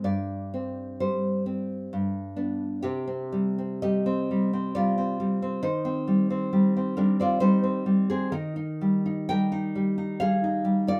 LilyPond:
\new Staff \with { instrumentName = "Nylon-string guitar" } { \time 3/4 \key c \minor \tempo 4 = 66 << { d''4 c''4 r4 | <c' g'>4 <g' ees''>4 <f' d''>4 | <ees' c''>4. <d' bes'>16 <f' d''>16 <ees' c''>8. <c' aes'>16 | <ees' bes'>4 <bes' g''>4 <aes' f''>8. <f' d''>16 | } \\ { g,8 c'8 g8 c'8 g,8 <b d'>8 | c16 c'16 g16 c'16 g16 c'16 g16 c'16 g16 c'16 g16 c'16 | ees16 c'16 g16 c'16 g16 c'16 g16 c'16 g16 c'16 g8 | ees16 ees'16 g16 ees'16 g16 ees'16 g16 ees'16 g16 ees'16 g16 ees'16 | } >> }